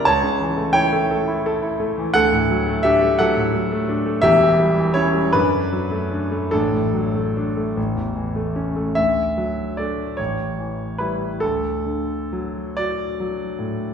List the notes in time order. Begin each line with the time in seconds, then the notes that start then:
0.05 C#2 C#5 A5
0.23 C#3
0.40 E3
0.57 A3
0.73 E4 C#5 G5
0.93 A3
1.11 A4
1.27 E4
1.46 A4
1.63 E4
1.80 A3
1.98 E3
2.14 D2 A4 F#5
2.33 A2
2.51 F#3
2.67 A3
2.83 D4 G4 E5
3.03 A3
3.19 F#3 A4 F#5
3.37 A2
3.55 F#3
3.72 A3
3.89 D4
4.06 A3
4.22 E1 E2 G4 E5
4.41 E3
4.60 G3
4.77 E3
4.94 C#4 E4 C#5
5.14 G3
5.33 F#2 D4 B4
5.53 D3
5.73 F#3
5.92 A3
6.11 D4
6.31 A3
6.51 A1 D4 A4
6.72 A2
6.94 F#3
7.15 A3
7.37 D4
7.57 A3
7.77 A1
7.96 E2
8.15 E3
8.36 A3
8.56 C#4
8.76 A3
8.95 D2 E5
9.37 F#3
9.77 A3 D4 D5
10.17 A1 C#5
10.59 E3
10.98 G3 E4 B4
11.40 D2 A4
11.86 D3
12.33 F#3
12.77 F#4 D5
13.20 F#3
13.59 A2